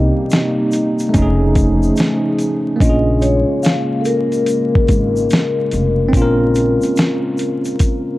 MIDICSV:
0, 0, Header, 1, 6, 480
1, 0, Start_track
1, 0, Key_signature, -5, "minor"
1, 0, Tempo, 833333
1, 1613, Time_signature, 4, 2, 24, 8
1, 4715, End_track
2, 0, Start_track
2, 0, Title_t, "Vibraphone"
2, 0, Program_c, 0, 11
2, 0, Note_on_c, 0, 75, 77
2, 1356, Note_off_c, 0, 75, 0
2, 1618, Note_on_c, 0, 75, 102
2, 1854, Note_on_c, 0, 73, 95
2, 1863, Note_off_c, 0, 75, 0
2, 2092, Note_on_c, 0, 77, 109
2, 2101, Note_off_c, 0, 73, 0
2, 2309, Note_on_c, 0, 69, 61
2, 2311, Note_off_c, 0, 77, 0
2, 2335, Note_off_c, 0, 69, 0
2, 2336, Note_on_c, 0, 70, 80
2, 4715, Note_off_c, 0, 70, 0
2, 4715, End_track
3, 0, Start_track
3, 0, Title_t, "Tine electric piano"
3, 0, Program_c, 1, 4
3, 0, Control_c, 1, 64, 127
3, 0, Note_on_c, 1, 58, 62
3, 0, Note_on_c, 1, 60, 56
3, 0, Note_on_c, 1, 63, 59
3, 0, Note_on_c, 1, 67, 68
3, 621, Note_off_c, 1, 58, 0
3, 629, Note_on_c, 1, 57, 72
3, 635, Note_off_c, 1, 60, 0
3, 646, Note_off_c, 1, 63, 0
3, 654, Note_on_c, 1, 61, 73
3, 659, Note_off_c, 1, 67, 0
3, 659, Control_c, 1, 64, 0
3, 679, Note_on_c, 1, 63, 74
3, 703, Note_on_c, 1, 68, 86
3, 754, Control_c, 1, 64, 127
3, 1582, Note_off_c, 1, 57, 0
3, 1590, Note_on_c, 1, 58, 59
3, 1595, Note_off_c, 1, 61, 0
3, 1607, Note_off_c, 1, 63, 0
3, 1616, Note_on_c, 1, 61, 58
3, 1620, Note_off_c, 1, 68, 0
3, 1622, Control_c, 1, 64, 0
3, 1639, Note_on_c, 1, 65, 57
3, 1666, Note_on_c, 1, 68, 65
3, 1714, Control_c, 1, 64, 127
3, 3499, Note_off_c, 1, 58, 0
3, 3505, Note_on_c, 1, 60, 71
3, 3512, Note_off_c, 1, 61, 0
3, 3523, Note_off_c, 1, 65, 0
3, 3532, Note_on_c, 1, 61, 68
3, 3537, Note_off_c, 1, 68, 0
3, 3554, Note_on_c, 1, 65, 72
3, 3581, Note_on_c, 1, 70, 83
3, 4715, Note_off_c, 1, 60, 0
3, 4715, Note_off_c, 1, 61, 0
3, 4715, Note_off_c, 1, 65, 0
3, 4715, Note_off_c, 1, 70, 0
3, 4715, End_track
4, 0, Start_track
4, 0, Title_t, "Analog synth pad"
4, 0, Program_c, 2, 89
4, 0, Note_on_c, 2, 48, 85
4, 0, Note_on_c, 2, 55, 72
4, 0, Note_on_c, 2, 58, 76
4, 0, Note_on_c, 2, 63, 87
4, 641, Note_off_c, 2, 48, 0
4, 641, Note_off_c, 2, 58, 0
4, 642, Note_off_c, 2, 55, 0
4, 647, Note_on_c, 2, 49, 69
4, 647, Note_on_c, 2, 53, 77
4, 649, Note_on_c, 2, 68, 72
4, 650, Note_on_c, 2, 57, 90
4, 1591, Note_off_c, 2, 63, 0
4, 1601, Note_off_c, 2, 53, 0
4, 1601, Note_off_c, 2, 68, 0
4, 1602, Note_off_c, 2, 57, 0
4, 1610, Note_on_c, 2, 58, 77
4, 1612, Note_on_c, 2, 56, 83
4, 4715, Note_off_c, 2, 49, 0
4, 4715, Note_off_c, 2, 56, 0
4, 4715, Note_off_c, 2, 58, 0
4, 4715, End_track
5, 0, Start_track
5, 0, Title_t, "Upright bass"
5, 0, Program_c, 3, 32
5, 662, Note_on_c, 3, 29, 100
5, 1085, Note_off_c, 3, 29, 0
5, 1618, Note_on_c, 3, 34, 98
5, 1970, Note_off_c, 3, 34, 0
5, 2817, Note_on_c, 3, 32, 87
5, 3029, Note_off_c, 3, 32, 0
5, 3301, Note_on_c, 3, 29, 77
5, 3532, Note_off_c, 3, 29, 0
5, 3532, Note_on_c, 3, 34, 95
5, 3887, Note_off_c, 3, 34, 0
5, 4715, End_track
6, 0, Start_track
6, 0, Title_t, "Drums"
6, 176, Note_on_c, 9, 82, 63
6, 182, Note_on_c, 9, 42, 90
6, 191, Note_on_c, 9, 38, 102
6, 233, Note_off_c, 9, 82, 0
6, 240, Note_off_c, 9, 42, 0
6, 249, Note_off_c, 9, 38, 0
6, 413, Note_on_c, 9, 82, 42
6, 422, Note_on_c, 9, 42, 72
6, 470, Note_off_c, 9, 82, 0
6, 479, Note_off_c, 9, 42, 0
6, 570, Note_on_c, 9, 82, 54
6, 578, Note_on_c, 9, 42, 34
6, 628, Note_off_c, 9, 82, 0
6, 636, Note_off_c, 9, 42, 0
6, 656, Note_on_c, 9, 42, 81
6, 658, Note_on_c, 9, 36, 85
6, 661, Note_on_c, 9, 82, 70
6, 713, Note_off_c, 9, 42, 0
6, 716, Note_off_c, 9, 36, 0
6, 719, Note_off_c, 9, 82, 0
6, 895, Note_on_c, 9, 42, 59
6, 897, Note_on_c, 9, 36, 82
6, 904, Note_on_c, 9, 82, 49
6, 952, Note_off_c, 9, 42, 0
6, 954, Note_off_c, 9, 36, 0
6, 962, Note_off_c, 9, 82, 0
6, 1053, Note_on_c, 9, 82, 51
6, 1111, Note_off_c, 9, 82, 0
6, 1131, Note_on_c, 9, 82, 65
6, 1138, Note_on_c, 9, 42, 75
6, 1153, Note_on_c, 9, 38, 108
6, 1189, Note_off_c, 9, 82, 0
6, 1196, Note_off_c, 9, 42, 0
6, 1211, Note_off_c, 9, 38, 0
6, 1374, Note_on_c, 9, 42, 46
6, 1380, Note_on_c, 9, 82, 46
6, 1432, Note_off_c, 9, 42, 0
6, 1437, Note_off_c, 9, 82, 0
6, 1615, Note_on_c, 9, 36, 113
6, 1619, Note_on_c, 9, 42, 82
6, 1626, Note_on_c, 9, 82, 62
6, 1672, Note_off_c, 9, 36, 0
6, 1677, Note_off_c, 9, 42, 0
6, 1683, Note_off_c, 9, 82, 0
6, 1854, Note_on_c, 9, 82, 45
6, 1856, Note_on_c, 9, 42, 59
6, 1912, Note_off_c, 9, 82, 0
6, 1913, Note_off_c, 9, 42, 0
6, 2092, Note_on_c, 9, 82, 67
6, 2101, Note_on_c, 9, 42, 90
6, 2110, Note_on_c, 9, 38, 107
6, 2149, Note_off_c, 9, 82, 0
6, 2158, Note_off_c, 9, 42, 0
6, 2168, Note_off_c, 9, 38, 0
6, 2333, Note_on_c, 9, 82, 40
6, 2336, Note_on_c, 9, 42, 71
6, 2391, Note_off_c, 9, 82, 0
6, 2393, Note_off_c, 9, 42, 0
6, 2488, Note_on_c, 9, 42, 32
6, 2491, Note_on_c, 9, 82, 51
6, 2546, Note_off_c, 9, 42, 0
6, 2549, Note_off_c, 9, 82, 0
6, 2571, Note_on_c, 9, 42, 77
6, 2581, Note_on_c, 9, 82, 66
6, 2628, Note_off_c, 9, 42, 0
6, 2639, Note_off_c, 9, 82, 0
6, 2737, Note_on_c, 9, 36, 98
6, 2795, Note_off_c, 9, 36, 0
6, 2813, Note_on_c, 9, 42, 56
6, 2815, Note_on_c, 9, 36, 82
6, 2826, Note_on_c, 9, 82, 53
6, 2870, Note_off_c, 9, 42, 0
6, 2873, Note_off_c, 9, 36, 0
6, 2884, Note_off_c, 9, 82, 0
6, 2974, Note_on_c, 9, 82, 52
6, 3032, Note_off_c, 9, 82, 0
6, 3054, Note_on_c, 9, 82, 64
6, 3057, Note_on_c, 9, 42, 82
6, 3071, Note_on_c, 9, 38, 117
6, 3111, Note_off_c, 9, 82, 0
6, 3114, Note_off_c, 9, 42, 0
6, 3129, Note_off_c, 9, 38, 0
6, 3292, Note_on_c, 9, 42, 53
6, 3301, Note_on_c, 9, 82, 46
6, 3349, Note_off_c, 9, 42, 0
6, 3359, Note_off_c, 9, 82, 0
6, 3532, Note_on_c, 9, 36, 107
6, 3536, Note_on_c, 9, 42, 77
6, 3545, Note_on_c, 9, 82, 63
6, 3590, Note_off_c, 9, 36, 0
6, 3594, Note_off_c, 9, 42, 0
6, 3602, Note_off_c, 9, 82, 0
6, 3772, Note_on_c, 9, 82, 48
6, 3776, Note_on_c, 9, 42, 59
6, 3830, Note_off_c, 9, 82, 0
6, 3834, Note_off_c, 9, 42, 0
6, 3926, Note_on_c, 9, 82, 56
6, 3936, Note_on_c, 9, 42, 33
6, 3984, Note_off_c, 9, 82, 0
6, 3994, Note_off_c, 9, 42, 0
6, 4011, Note_on_c, 9, 82, 62
6, 4017, Note_on_c, 9, 42, 92
6, 4026, Note_on_c, 9, 38, 109
6, 4069, Note_off_c, 9, 82, 0
6, 4074, Note_off_c, 9, 42, 0
6, 4084, Note_off_c, 9, 38, 0
6, 4249, Note_on_c, 9, 82, 41
6, 4258, Note_on_c, 9, 42, 69
6, 4306, Note_off_c, 9, 82, 0
6, 4316, Note_off_c, 9, 42, 0
6, 4406, Note_on_c, 9, 82, 57
6, 4410, Note_on_c, 9, 42, 34
6, 4463, Note_off_c, 9, 82, 0
6, 4467, Note_off_c, 9, 42, 0
6, 4489, Note_on_c, 9, 42, 87
6, 4494, Note_on_c, 9, 36, 84
6, 4495, Note_on_c, 9, 82, 66
6, 4547, Note_off_c, 9, 42, 0
6, 4551, Note_off_c, 9, 36, 0
6, 4552, Note_off_c, 9, 82, 0
6, 4715, End_track
0, 0, End_of_file